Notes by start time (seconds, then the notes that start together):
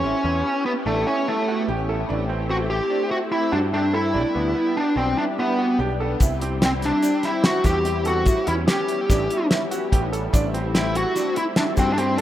Already playing: C#4
0.04 A1 B3 C#4 E4 G4
0.24 E2 C#4
0.46 C#4
0.66 B3
0.86 A1 A3 D4
1.07 C#4 E4
1.28 A3 E4
1.48 F#4
1.68 A1 G4
1.89 A4
2.09 A1 A3 C4 D4 E4 G4
2.29 C4
2.49 C4 F#4
2.70 G4
2.90 D4
3.11 E4 F#4
3.31 E4
3.52 G2 D4 F#4
3.73 D4 G4
3.93 E4 A4
4.13 B1 G3 B3 D4 G4
4.35 D2 B3
4.55 B3
4.77 D4
4.96 B1 C4 D4
5.17 D4 E4
5.38 B3 E4
5.58 F#4
5.79 B1 G4
6.00 A4
6.20 C2 G3 C4 E4 G4, kick, closed hi-hat, shaker
6.41 C4, closed hi-hat
6.62 C4, snare, closed hi-hat
6.82 D4, snare, closed hi-hat
7.02 D4, closed hi-hat, shaker
7.23 E4, snare, closed hi-hat
7.44 E4 F#4, snare, closed hi-hat
7.64 E2 F#4 G4, kick, snare, closed hi-hat, shaker
7.85 G4, closed hi-hat
8.05 F#4 A4, closed hi-hat, shaker
8.26 A1 G3 B3 C#4 E4, kick, closed hi-hat, shaker
8.47 E2 C#4 E4, closed hi-hat
8.68 C#4 G4, snare, closed hi-hat
8.88 closed hi-hat
9.09 A1 D4, kick, snare, closed hi-hat, shaker
9.30 E4, closed hi-hat
9.51 E4, snare, closed hi-hat
9.71 F#4, closed hi-hat, shaker
9.92 A1 G4, kick, closed hi-hat
10.13 A4, closed hi-hat, shaker
10.33 A1 G3 A3 C4 D4 E4, kick, closed hi-hat, shaker
10.54 C4, closed hi-hat
10.74 C4 E4, snare, closed hi-hat
10.95 F#4, closed hi-hat
11.16 D4, snare, closed hi-hat, shaker
11.36 E4, closed hi-hat
11.56 D4 E4, snare, closed hi-hat
11.77 G2 C4 F#4, kick, snare, closed hi-hat, shaker
11.93 D4
11.98 C4 G4, closed hi-hat